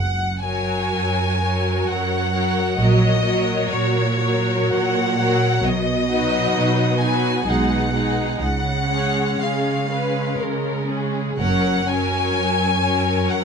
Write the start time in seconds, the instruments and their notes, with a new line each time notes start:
Already playing: double bass section F#1, cello section F#2, violin section F#5
0.43 viola section F#3 F#4, violin section A#4 C#5 G#5
0.94 cello section F#2
1.41 viola section F#3 F#4, violin section A#4 C#5
1.88 cello section F#2, violin section F#5
2.32 viola section F#3 F#4, violin section A#4 C#5
2.77 double bass section A#1, cello section A#2, viola section F#3 F#4, violin section A#4 C#5 D#5
3.24 viola section F#3 F#4, violin section A#4 C#5
3.70 cello section A#2, violin section C#5
4.20 viola section F#3 F#4, violin section A#4 C#5
4.72 cello section A#2, violin section F#5
5.19 viola section F#3 F#4, violin section A#4 C#5
5.63 double bass section B1, cello section B2, violin section D#5
6.08 viola section F#3 D#4, violin section F#4 B4
6.54 cello section B2
6.99 viola section F#3 D#4, violin section F#4 B4 G#5
7.46 double bass section B1, cello section B2, viola section G#3 D#4, violin section D#4 G#4 F#5
7.93 viola section G#3 D#4, violin section D#4 G#4
8.39 double bass section C#2, cello section C#3, violin section F#5
8.88 viola section G#3 C#4, violin section G#4 C#5
9.39 cello section C#3, violin section G#4 F5
9.89 viola section G#3 C#4, violin section B4
10.39 cello section C#3, violin section A#4
10.88 viola section G#3 C#4, violin section G#4
11.38 double bass section F#1, cello section F#2, viola section F#3 C#4, violin section A#4 C#5 F#5
11.87 viola section F#3 C#4, violin section A#4 C#5 G#5
12.36 cello section F#2
12.83 viola section F#3 C#4, violin section A#4 C#5
13.31 cello section F#2, violin section F#5